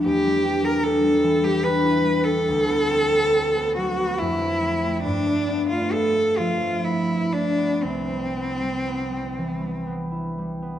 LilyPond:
<<
  \new Staff \with { instrumentName = "Cello" } { \time 3/4 \key c \major \tempo 4 = 69 g'8. bes'16 a'8. g'16 b'8. a'16~ | a'4. fis'8 e'4 | d'8. f'16 a'8 f'8 e'8 d'8 | c'2 r4 | }
  \new Staff \with { instrumentName = "Harp" } { \time 3/4 \key c \major <e, d' e'>16 g16 d'16 g16 d'16 g16 e16 g16 d'16 e'16 g16 d'16 | d,16 b16 c'16 b16 c'16 b16 fis16 b16 f,16 a16 c'16 a16 | g,16 a16 b16 a16 b16 a16 f16 a16 b16 e'16 a16 b16 | c,16 g16 b16 g16 b16 g16 e16 g16 b16 e'16 g16 b16 | }
>>